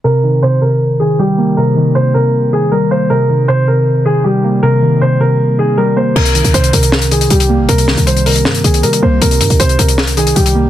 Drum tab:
CC |----------------|----------------|----------------|----------------|
HH |----------------|----------------|----------------|----------------|
SD |----------------|----------------|----------------|----------------|

CC |x---------------|----------------|----------------|
HH |-xxxxxxx-xxxxx--|xx-xxxox-xxxxx--|xxxxxxxx-xxxxx--|
SD |--------o-------|--o-----o-------|--------o-------|